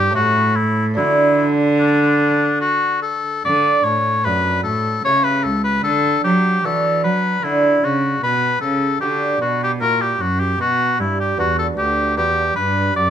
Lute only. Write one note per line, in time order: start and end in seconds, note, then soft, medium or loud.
0.00 0.11 G2 medium
0.00 0.11 D4 medium
0.00 0.11 E4 medium
0.10 0.93 A3 medium
0.10 0.94 C#4 medium
0.10 0.95 E4 medium
0.15 0.94 A2 medium
0.94 3.39 A3 medium
0.94 3.40 D4 medium
0.94 3.41 F#4 medium
0.98 3.21 D3 medium
3.45 3.82 D3 medium
3.85 4.21 A2 medium
4.25 4.61 F#2 medium
4.25 5.01 A3 soft
4.25 5.01 D4 soft
4.25 5.02 F#4 medium
4.65 5.01 A2 medium
5.05 5.41 C#3 medium
5.05 5.81 A3 soft
5.05 5.81 E4 soft
5.05 5.81 G4 soft
5.86 6.21 D3 medium
6.25 6.60 F#3 medium
6.64 7.00 E3 medium
6.64 7.39 D4 soft
6.64 7.39 F#4 medium
7.04 7.40 F#3 medium
7.44 7.79 D3 medium
7.44 8.19 D4 soft
7.44 8.19 F#4 soft
7.84 8.19 C#3 medium
8.23 8.58 B2 medium
8.63 8.98 C#3 medium
9.02 9.37 D3 medium
9.02 9.77 D4 soft
9.02 9.77 F#4 soft
9.41 9.77 B2 medium
9.81 10.16 A#2 medium
9.81 10.56 E4 soft
9.81 10.56 F#4 soft
10.20 10.56 F#2 medium
10.60 10.95 B2 medium
10.99 11.34 G2 medium
11.38 11.73 E2 medium
11.38 12.13 B3 soft
11.38 12.13 D4 soft
11.38 12.13 F#4 medium
11.77 12.12 D2 medium
12.17 12.52 E2 medium
12.17 12.91 B3 soft
12.17 12.92 D4 soft
12.17 12.92 F#4 soft
12.56 12.91 G2 medium
12.95 13.10 F#2 medium